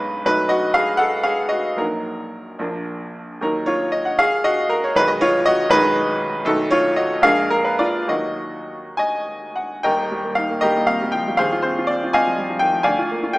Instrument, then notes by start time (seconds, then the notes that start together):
grand piano
Already playing: B1 G#3 B3 D#4 B4 C#5 D#5 F5
0.25 B1 F#3 A3 D#4 B4
0.49 F#4 D#5
0.74 G#4 F5
0.97 A4 F#5
1.23 G#4 F5
1.49 F#4 D#5
1.76 A#1 F#3 A#3 D#4 A#4
2.59 A#1 F3 A#3 D4
3.41 D#2 F#3 A#3 D#4 A#4
3.66 F4 C#5
3.92 D#5
4.05 F#5
4.19 G#4 F5
4.44 F#4 D#5
4.69 A#4
4.84 C#5
4.95 B1 D#3 G#3 D#4 B4
5.08 D#5
5.21 F4 C#5
5.46 F#4 D#5
5.69 B1 D#3 G#3 D#4 B4
6.45 B1 D#3 A3 D#4 A4
6.71 F4 C#5
6.96 F#4 D#5
7.22 A#1 G#3 A#3 D4 G#4 F5
7.50 A#4
7.65 B4
7.79 F4 D5
8.08 D#2 F#3 A#3 D#4 F#4 D#5
8.97 D#5 G#5
9.56 F#5
9.83 D#1 D#2 A#4 D#5 G5
9.99 A#3
10.12 G3
10.25 A#3
10.35 D#4 F5
10.51 A#3
10.61 G3 G4 A#4 D#5
10.77 A#2
10.87 C3 F5
11.02 G3
11.12 F3 G5
11.28 G3
11.37 D#1 D#2 G#4 C5 F5
11.52 F4
11.62 C4 C5
11.79 F4
11.87 C4 D5
12.04 F4
12.13 C4 D#5 F5 G#5
12.27 F3
12.38 G3
12.50 F3
12.59 D#3 G5
12.73 F3
12.83 D2 D5 F5 G#5
12.99 F4
13.12 A#3
13.23 F4
13.33 G5